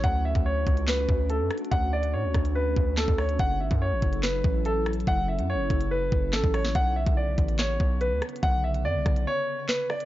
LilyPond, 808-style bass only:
\new Staff \with { instrumentName = "808-style bass" } { \clef bass \time 4/4 \key fis \minor \tempo 4 = 143 d,8. d,8. cis,4 d,8. fis,16 r8 | d,4 a,16 d,16 d,4 d,8. d,8. | fis,,8 gis,,16 fis,8 gis,,16 fis,,4 a,,4. | fis,,8. fis,16. fis,,16. fis,,4 fis,,8 a,,16 a,,8. |
b,,8. b,,8. a,,4 b,,8. d,16 r8 | b,,4 fis,16 b,,16 b,,8 r2 | }